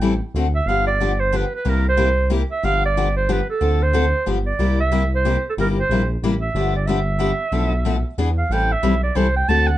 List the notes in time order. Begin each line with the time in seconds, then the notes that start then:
Already playing: A1 G5
0.01 E3 G3 C4 E4 A4
0.34 D2 D3 A3 C4 F#4 A4
0.55 E5
0.66 G1 D3 F3 B3 D4 G4 F5
0.87 D5
1.00 D3 F3 B3 D4 G4
1.20 C5
1.32 D3 F3 B3 D4 G4 B4
1.55 B4
1.65 C2 C3 G3 A#3 E4 G4
1.69 A#4
1.89 C5
1.97 C3 G3 A#3 E4 G4
2.30 C3 G3 A#3 E4 G4
2.52 E5
2.63 G1 D3 F3 B3 D4 G4 F5
2.85 D5
2.97 D3 F3 B3 D4 G4
3.17 C5
3.29 D3 F3 B3 D4 G4 B4
3.50 A4
3.61 D2 D3 F3 C4 D4 A4
3.83 C5
3.93 D3 F3 C4 D4 A4
4.26 G1 D3 F3 B3 D4 G4
4.46 D5
4.59 C2 C3 G3 A#3 E4 G4
4.80 E5
4.92 C3 G3 A#3 E4 G4
5.16 C5
5.25 C3 G3 A#3 E4 G4
5.50 A4
5.57 G1 C3 G3 A#3 E4 G4 A#4
5.80 C5
5.89 A#1 C3 G3 A#3 E4 G4
6.22 A1 C3 G3 A#3 E4 G4
6.41 E5
6.54 G1 D3 F3 B3 D4 G4
6.76 D5
6.87 D3 F3 B3 D4 G4 E5
7.19 D3 F3 B3 D4 G4
7.52 B1 B2 F3 A3 D4 A4
7.85 B2 F3 A3 D4 A4
8.18 E2 E3 B3 D4 G#4
8.38 F5
8.49 A1 E3 G3 C4 E4 A4 G5
8.72 E5
8.83 B1 E3 G3 C4 E4 A4
9.03 D5
9.15 C2 E3 G3 C4 E4 A4 C5
9.36 G5
9.48 D2 D3 A3 C4 F#4 A4 A5
9.67 F#5